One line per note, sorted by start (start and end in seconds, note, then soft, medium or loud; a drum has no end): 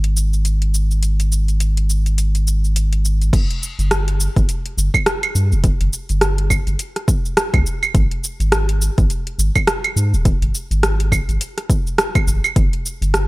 0.00 3.31 G#1 medium
0.00 closed hi-hat soft
0.17 cabasa medium
0.33 cabasa soft
0.45 closed hi-hat medium
0.45 cabasa soft
0.62 closed hi-hat soft
0.74 cabasa medium
0.91 cabasa soft
1.03 closed hi-hat medium
1.03 cabasa soft
1.20 closed hi-hat soft
1.20 cabasa soft
1.32 cabasa medium
1.48 closed hi-hat soft
1.48 cabasa soft
1.60 closed hi-hat medium
1.60 cabasa soft
1.77 closed hi-hat soft
1.90 cabasa medium
2.06 closed hi-hat soft
2.06 cabasa soft
2.18 closed hi-hat medium
2.18 cabasa soft
2.35 closed hi-hat soft
2.35 cabasa soft
2.47 cabasa medium
2.64 cabasa soft
2.76 closed hi-hat medium
2.76 cabasa soft
2.93 closed hi-hat soft
3.05 cabasa medium
3.22 closed hi-hat soft
3.22 cabasa soft
3.33 3.45 G1 medium
3.33 kick loud
3.33 closed hi-hat medium
3.33 crash loud
3.33 cabasa soft
3.51 closed hi-hat soft
3.63 cabasa medium
3.79 4.28 G1 medium
3.79 closed hi-hat soft
3.79 cabasa soft
3.91 cross-stick loud
3.91 closed hi-hat medium
3.91 cabasa soft
4.08 closed hi-hat soft
4.20 cabasa medium
4.36 4.45 G1 loud
4.36 kick loud
4.36 closed hi-hat soft
4.36 cabasa soft
4.49 closed hi-hat medium
4.49 cabasa soft
4.66 closed hi-hat soft
4.77 4.89 G1 loud
4.77 cabasa medium
4.94 kick medium
4.94 cabasa soft
4.94 claves medium
5.06 cross-stick loud
5.06 closed hi-hat medium
5.06 cabasa soft
5.23 closed hi-hat soft
5.23 claves medium
5.35 5.54 G2 medium
5.35 cabasa medium
5.52 5.70 F1 loud
5.52 cabasa soft
5.64 kick loud
5.64 closed hi-hat medium
5.64 cabasa soft
5.81 5.89 G1 medium
5.81 closed hi-hat soft
5.93 cabasa medium
6.09 6.59 G1 medium
6.09 closed hi-hat soft
6.09 cabasa soft
6.21 cross-stick medium
6.21 closed hi-hat medium
6.21 cabasa soft
6.38 closed hi-hat soft
6.50 kick medium
6.50 cabasa medium
6.50 claves medium
6.67 6.76 G1 loud
6.67 closed hi-hat soft
6.67 cabasa soft
6.79 closed hi-hat medium
6.79 cabasa soft
6.96 cross-stick soft
6.96 closed hi-hat soft
7.08 kick loud
7.08 cabasa medium
7.25 cabasa soft
7.37 cross-stick loud
7.37 closed hi-hat medium
7.37 cabasa soft
7.54 7.62 C#2 medium
7.54 kick loud
7.54 closed hi-hat soft
7.54 claves medium
7.66 cabasa medium
7.83 cabasa soft
7.83 claves medium
7.94 8.06 G#1 loud
7.94 kick loud
7.94 closed hi-hat medium
7.94 cabasa soft
8.11 closed hi-hat soft
8.24 cabasa medium
8.40 8.90 G#1 medium
8.40 closed hi-hat soft
8.40 cabasa soft
8.52 cross-stick loud
8.52 closed hi-hat medium
8.52 cabasa soft
8.69 closed hi-hat soft
8.82 cabasa medium
8.98 9.06 G#1 loud
8.98 kick loud
8.98 closed hi-hat soft
8.98 cabasa soft
9.10 closed hi-hat medium
9.10 cabasa soft
9.27 closed hi-hat soft
9.39 9.50 G#1 loud
9.39 cabasa medium
9.55 kick medium
9.55 cabasa soft
9.55 claves medium
9.67 cross-stick loud
9.67 closed hi-hat medium
9.67 cabasa soft
9.84 closed hi-hat soft
9.84 claves medium
9.96 10.15 G#2 medium
9.96 cabasa medium
10.13 10.32 D#1 loud
10.13 cabasa soft
10.25 kick loud
10.25 closed hi-hat medium
10.25 cabasa soft
10.42 10.50 G#1 medium
10.42 closed hi-hat soft
10.55 cabasa medium
10.71 11.20 G#1 medium
10.71 closed hi-hat soft
10.71 cabasa soft
10.83 cross-stick medium
10.83 closed hi-hat medium
10.83 cabasa soft
11.00 closed hi-hat soft
11.12 kick medium
11.12 cabasa medium
11.12 claves medium
11.29 11.37 G#1 loud
11.29 closed hi-hat soft
11.29 cabasa soft
11.41 closed hi-hat medium
11.41 cabasa soft
11.58 cross-stick soft
11.58 closed hi-hat soft
11.70 kick loud
11.70 cabasa medium
11.87 cabasa soft
11.98 cross-stick loud
11.98 closed hi-hat medium
11.98 cabasa soft
12.15 kick loud
12.15 closed hi-hat soft
12.15 cabasa soft
12.15 claves medium
12.27 12.39 G#1 loud
12.27 cabasa medium
12.44 cabasa soft
12.44 claves medium
12.56 12.68 G1 loud
12.56 kick loud
12.56 closed hi-hat medium
12.56 cabasa soft
12.73 closed hi-hat soft
12.86 cabasa medium
13.02 13.28 G1 medium
13.02 closed hi-hat soft
13.02 cabasa soft
13.14 cross-stick medium
13.14 closed hi-hat medium
13.14 cabasa soft